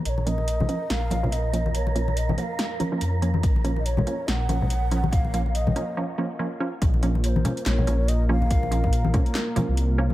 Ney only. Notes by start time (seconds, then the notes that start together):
0.06 C#5 D#5
0.27 D#5
0.90 F5
1.32 D#5
1.75 C#5
2.17 D#5
2.38 F#5
2.42 F5
3.80 D#5
3.85 C#5
4.28 F#5
5.12 F5
5.54 D#5
7.24 C#5
7.29 C5
7.66 C#5
8.08 D#5
8.30 F5